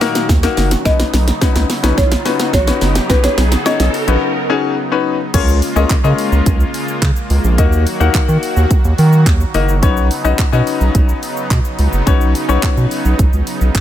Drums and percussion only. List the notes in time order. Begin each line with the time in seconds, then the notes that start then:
0.01 snare, open hi-hat, shaker
0.15 snare, closed hi-hat, shaker
0.29 kick, snare, shaker
0.43 snare, closed hi-hat, shaker
0.57 snare, open hi-hat, shaker
0.71 snare, closed hi-hat, shaker
0.85 kick, snare, shaker
1.00 snare, closed hi-hat, shaker
1.14 snare, open hi-hat, shaker
1.28 snare, closed hi-hat, shaker
1.41 kick, snare, shaker
1.56 snare, closed hi-hat, shaker
1.70 snare, open hi-hat, shaker
1.84 snare, closed hi-hat, shaker
1.98 kick, snare, shaker
2.12 snare, closed hi-hat, shaker
2.25 snare, open hi-hat, shaker
2.40 snare, closed hi-hat, shaker
2.53 kick, snare, shaker
2.67 snare, closed hi-hat, shaker
2.81 snare, open hi-hat, shaker
2.95 snare, closed hi-hat, shaker
3.10 kick, snare, shaker
3.24 snare, closed hi-hat, shaker
3.38 snare, open hi-hat, shaker
3.52 snare, closed hi-hat, shaker
3.66 snare, shaker
3.80 snare, closed hi-hat, shaker
3.94 open hi-hat, shaker
4.08 closed hi-hat, shaker
5.34 kick, closed hi-hat, crash, shaker
5.48 shaker
5.62 open hi-hat, shaker
5.76 shaker
5.90 kick, clap, closed hi-hat, shaker
6.04 shaker
6.18 open hi-hat, shaker
6.32 shaker
6.46 kick, closed hi-hat, shaker
6.60 shaker
6.74 open hi-hat, shaker
6.88 shaker
7.02 kick, clap, closed hi-hat, shaker
7.16 shaker
7.30 open hi-hat, shaker
7.44 shaker
7.58 kick, closed hi-hat, shaker
7.73 shaker
7.87 open hi-hat, shaker
8.01 shaker
8.14 kick, clap, closed hi-hat, shaker
8.29 shaker
8.43 open hi-hat, shaker
8.57 shaker
8.71 kick, closed hi-hat, shaker
8.85 shaker
8.98 open hi-hat, shaker
9.13 shaker
9.26 kick, clap, closed hi-hat, shaker
9.40 shaker
9.54 open hi-hat, shaker
9.68 shaker
9.83 kick, closed hi-hat, shaker
9.97 shaker
10.11 open hi-hat, shaker
10.25 shaker
10.39 kick, clap, closed hi-hat, shaker
10.53 shaker
10.67 open hi-hat, shaker
10.81 shaker
10.95 kick, closed hi-hat, shaker
11.09 shaker
11.23 open hi-hat, shaker
11.37 shaker
11.51 kick, clap, closed hi-hat, shaker
11.65 shaker
11.79 open hi-hat, shaker
11.93 shaker
12.07 kick, closed hi-hat, shaker
12.21 shaker
12.35 open hi-hat, shaker
12.49 shaker
12.63 kick, clap, closed hi-hat, shaker
12.77 shaker
12.91 open hi-hat, shaker
13.05 shaker
13.19 kick, closed hi-hat, shaker
13.33 shaker
13.47 open hi-hat, shaker
13.61 shaker
13.75 kick, clap, closed hi-hat, shaker